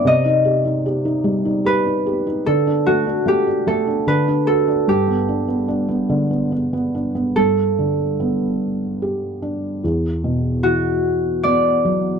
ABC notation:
X:1
M:3/4
L:1/16
Q:1/4=74
K:G
V:1 name="Harp"
_e8 B4 | A2 F2 G2 A2 B2 A2 | G8 z4 | A12- |
A4 F4 d4 |]
V:2 name="Felt piano"
C, _E G E G E G, E G E G E | D, D A, D A, D A, D D, D F D | G,, B, D B, D B, D, B, D B, D B, | G,,2 D,2 B,4 G2 D2 |
E,,2 B,,2 E,4 B,2 F,2 |]